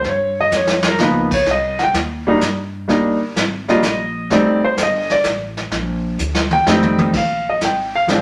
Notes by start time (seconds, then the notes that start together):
0.04 G2, brush sweep, kick, snare
0.09 C#5
0.41 D#5
0.51 F2, snare, hi-hat pedal
0.56 C#5
0.67 snare
0.83 snare
0.88 A#4
0.98 C#2 F3 A#3 B3 D#4, snare
1.03 B4
1.31 C#5, kick, crash
1.46 C2, brush sweep, kick, snare
1.51 D#5
1.79 snare
1.83 G5
1.93 D#2, kick, snare, hi-hat pedal
2.27 G3 A#3 D4 D#4
2.41 G2, kick, snare, hi-hat pedal
2.88 G1 G3 A#3 D4 D#4, brush sweep, kick, snare
3.36 G#1, kick, snare, hi-hat pedal
3.68 G3 A#3 D4 F4 D#5, snare
3.82 A#1, kick, snare, hi-hat pedal
4.30 F1 G3 A3 C4 D#4 D5, brush sweep, kick, snare
4.64 C5
4.77 G1, kick, snare, hi-hat pedal
4.83 D#5
5.10 D5, snare
5.24 A1, kick, snare, hi-hat pedal
5.57 snare
5.71 A#1, brush sweep, kick, snare
6.18 D2, hi-hat pedal
6.35 snare
6.51 G5, mid tom
6.66 F2 G3 A3 C4 D#4, snare
6.83 mid tom
6.98 mid tom
7.13 A#1 F5, brush sweep, kick, snare, crash
7.49 D#5
7.61 G#1 G5, kick, snare, hi-hat pedal
7.95 F5
8.07 A1 F3 G#3 C4 D4, kick, snare, hi-hat pedal